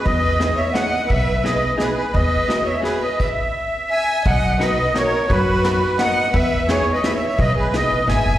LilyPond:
<<
  \new Staff \with { instrumentName = "Accordion" } { \time 3/4 \key e \major \tempo 4 = 172 dis''4. e''8 fis''4 | e''4 dis''4 b'8 b'8 | dis''4. e''8 b'8 dis''8 | e''2 gis''4 |
\key b \major fis''4 dis''4 cis''4 | b'2 fis''4 | e''4 \tuplet 3/2 { cis''4 dis''8 e''8 e''8 e''8 } | dis''8 b'8 dis''4 gis''4 | }
  \new Staff \with { instrumentName = "Violin" } { \time 3/4 \key e \major b'4. cis''8 dis''4 | b'4 b'4 gis'8 gis'8 | b'4. cis''8 gis'8 b'8 | r2 e''4 |
\key b \major dis''4 b'4 ais'4 | fis'2 dis''4 | b'4 \tuplet 3/2 { gis'4 b'8 b'8 cis''8 cis''8 } | b'8 gis'8 b'4 e''4 | }
  \new Staff \with { instrumentName = "Hollow-body jazz guitar" } { \time 3/4 \key e \major r4 <b dis' e' gis'>8 r8 <b dis' e' gis'>8 r8 | r4 <b dis' e' gis'>8 r8 <b dis' e' gis'>8 r8 | r4 <b e' fis' gis'>8 r8 <b e' fis' gis'>8 r8 | r2. |
\key b \major r4 <b dis' fis' ais'>8 r8 <b dis' fis' ais'>8 r8 | r4 <b dis' fis' ais'>8 r8 <b dis' fis' ais'>8 r8 | r4 <b dis' e' gis'>8 r8 <b dis' e' gis'>8 r8 | r4 <b dis' e' gis'>8 r8 <b dis' e' gis'>8 r8 | }
  \new Staff \with { instrumentName = "Upright bass" } { \clef bass \time 3/4 \key e \major e,2 r4 | b,,2 r4 | e,2 r4 | r2. |
\key b \major b,,2 r4 | fis,2 r4 | e,2 r4 | b,,4. ais,,8 gis,,8 fis,,8 | }
  \new DrumStaff \with { instrumentName = "Drums" } \drummode { \time 3/4 <bd cymr>4 <cymr sn>4 <cymr sn>4 | <bd cymr>4 <cymr sn>4 <cymr sn>4 | <bd cymr>4 <cymr sn>4 <cymr sn>4 | <cymc bd>4 r4 r4 |
<bd cymr>4 <cymr sn>4 <cymr sn>4 | <bd cymr>4 <cymr sn>4 <cymr sn>4 | <bd cymr>4 <cymr sn>4 <cymr sn>4 | <bd cymr>4 <cymr sn>4 <cymr sn>4 | }
>>